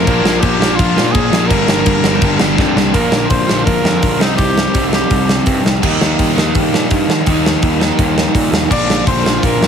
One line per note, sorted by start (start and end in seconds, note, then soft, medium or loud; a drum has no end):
0.00 0.42 A#4 medium
0.06 0.22 A#1 loud
0.06 0.24 A#2 medium
0.06 0.25 F3 medium
0.06 0.26 A#3 medium
0.06 0.26 D4 loud
0.06 kick loud
0.06 crash medium
0.22 0.40 A#1 medium
0.22 0.41 A#2 medium
0.22 0.42 F3 medium
0.22 0.43 D4 loud
0.22 snare loud
0.26 0.44 A#3 loud
0.41 0.58 A#1 loud
0.41 0.60 A#2 loud
0.41 0.60 F3 loud
0.41 0.62 A#3 loud
0.41 0.62 D4 loud
0.41 0.77 G4 medium
0.41 kick loud
0.41 crash medium
0.59 0.76 A#1 medium
0.59 0.78 A#2 medium
0.59 0.78 F3 medium
0.59 0.79 A#3 medium
0.59 0.80 D4 medium
0.59 snare loud
0.76 0.96 A#1 medium
0.76 0.96 A#2 medium
0.76 0.96 F3 loud
0.76 0.97 A#3 loud
0.76 1.13 F4 medium
0.76 kick loud
0.76 crash medium
0.80 0.97 D4 loud
0.97 1.13 A#2 loud
0.97 1.13 A#2 medium
0.97 1.15 F3 medium
0.97 1.15 A#3 loud
0.97 1.16 D4 loud
0.97 snare loud
1.12 1.31 A#1 medium
1.12 1.31 A#2 loud
1.12 1.48 G#4 loud
1.12 kick loud
1.12 crash medium
1.16 1.32 F3 loud
1.16 1.34 A#3 loud
1.16 1.34 D4 loud
1.32 1.49 A#1 loud
1.32 1.49 A#2 medium
1.32 1.50 F3 medium
1.32 1.51 A#3 medium
1.32 1.52 D4 loud
1.32 snare loud
1.47 1.67 G1 loud
1.47 1.68 G2 medium
1.47 2.57 A#4 medium
1.47 kick loud
1.47 crash medium
1.51 1.69 D3 medium
1.51 1.68 G3 medium
1.51 1.69 A#3 medium
1.51 1.70 D4 medium
1.67 1.85 G1 medium
1.67 1.85 G2 medium
1.67 1.85 D3 loud
1.67 1.86 G3 medium
1.67 1.87 A#3 loud
1.67 1.87 D4 medium
1.67 snare loud
1.86 2.02 G1 medium
1.86 2.03 G2 medium
1.86 2.03 D3 medium
1.86 2.04 G3 medium
1.86 2.05 A#3 loud
1.86 2.05 D4 loud
1.86 kick loud
1.86 crash medium
2.03 2.20 G1 medium
2.03 2.21 G2 medium
2.03 2.22 D3 medium
2.03 2.21 G3 medium
2.03 2.23 A#3 medium
2.03 2.23 D4 medium
2.03 snare loud
2.22 2.39 G1 medium
2.22 2.39 G2 medium
2.22 2.40 D3 medium
2.22 2.40 G3 loud
2.22 2.40 A#3 loud
2.22 2.40 D4 loud
2.22 kick loud
2.22 crash medium
2.39 2.57 G1 medium
2.39 2.56 G2 medium
2.39 2.57 D3 medium
2.39 2.57 G3 medium
2.39 2.57 A#3 loud
2.39 2.57 D4 medium
2.39 snare loud
2.57 2.75 F2 loud
2.57 2.74 G2 loud
2.57 2.75 D3 loud
2.57 2.75 G3 loud
2.57 2.76 A#3 loud
2.57 2.76 D4 loud
2.57 kick loud
2.57 snare medium
2.76 2.93 C2 loud
2.76 2.93 G2 medium
2.76 2.93 D3 medium
2.76 2.94 G3 medium
2.76 2.93 A#3 medium
2.76 2.94 D4 loud
2.76 snare medium
2.93 3.08 A#1 medium
2.93 4.19 A#2 medium
2.93 4.18 D3 medium
2.93 4.19 F3 medium
2.93 4.19 A#3 medium
2.93 4.20 D4 medium
2.93 3.28 A#4 loud
2.93 kick medium
2.93 open hi-hat medium
3.12 3.26 A#1 medium
3.12 snare loud
3.30 3.44 A#1 medium
3.30 3.64 C5 loud
3.30 kick loud
3.30 open hi-hat medium
3.47 3.62 A#1 medium
3.47 4.19 A#2 medium
3.47 4.20 F3 medium
3.47 4.18 A#3 medium
3.47 snare loud
3.66 3.80 A#1 medium
3.66 4.23 A#4 loud
3.66 kick loud
3.66 open hi-hat medium
3.84 3.98 F2 medium
3.84 snare loud
4.03 4.17 A#1 medium
4.03 kick loud
4.03 open hi-hat medium
4.19 4.34 C2 medium
4.19 5.63 C3 medium
4.19 5.83 G3 medium
4.19 5.63 C4 medium
4.19 5.84 D#4 medium
4.19 4.36 D#4 medium
4.19 snare loud
4.37 4.66 C2 medium
4.37 4.88 G4 loud
4.37 kick loud
4.37 open hi-hat medium
4.58 snare loud
4.73 5.02 C2 medium
4.73 5.63 C3 medium
4.73 5.83 G3 medium
4.73 5.65 C4 medium
4.73 kick loud
4.73 open hi-hat medium
4.93 5.44 G4 medium
4.93 snare loud
5.10 5.38 C2 medium
5.10 kick loud
5.10 open hi-hat medium
5.29 snare medium
5.46 5.60 G2 medium
5.46 kick loud
5.46 open hi-hat medium
5.65 5.78 C2 medium
5.65 snare loud
5.82 5.96 D#2 loud
5.82 7.25 D#3 medium
5.82 7.25 G3 medium
5.82 7.27 A#3 medium
5.82 7.26 D#4 loud
5.82 kick loud
5.82 crash loud
6.01 6.15 D#2 medium
6.01 snare loud
6.19 6.33 D#2 loud
6.19 kick loud
6.19 open hi-hat medium
6.35 6.51 D#2 medium
6.35 7.24 D#3 medium
6.35 7.27 A#3 medium
6.35 7.25 D#4 medium
6.35 snare loud
6.55 6.68 D#2 medium
6.55 kick loud
6.55 open hi-hat medium
6.73 6.86 A#2 medium
6.73 snare loud
6.91 7.04 G2 medium
6.91 kick loud
6.91 open hi-hat medium
7.09 7.22 D#3 medium
7.09 snare loud
7.26 7.54 D#2 medium
7.26 8.69 D#3 medium
7.26 8.69 G3 medium
7.26 8.70 A#3 medium
7.26 8.70 D#4 medium
7.26 kick loud
7.26 open hi-hat medium
7.46 snare loud
7.62 7.90 D#2 medium
7.62 kick loud
7.62 open hi-hat medium
7.80 8.68 D#3 medium
7.80 8.70 A#3 medium
7.80 8.69 D#4 medium
7.80 snare medium
7.99 8.26 D#2 medium
7.99 kick loud
7.99 open hi-hat medium
8.18 snare loud
8.35 8.48 A#2 medium
8.35 kick loud
8.35 open hi-hat medium
8.52 8.66 D#2 medium
8.52 snare loud
8.70 8.84 A#1 medium
8.70 9.68 A#2 medium
8.70 9.68 D3 medium
8.70 9.68 F3 medium
8.70 9.68 A#3 medium
8.70 9.68 D4 medium
8.70 9.05 D5 loud
8.70 kick loud
8.70 crash loud
8.88 9.02 A#1 medium
8.88 snare loud
9.07 9.20 A#1 medium
9.07 9.41 C5 medium
9.07 kick loud
9.07 open hi-hat medium
9.23 9.38 A#1 medium
9.23 9.68 A#2 medium
9.23 9.68 F3 medium
9.23 9.68 A#3 medium
9.23 snare loud
9.43 9.57 A#1 medium
9.43 9.68 A#4 medium
9.43 kick loud
9.43 open hi-hat medium
9.60 9.68 F2 medium
9.60 snare loud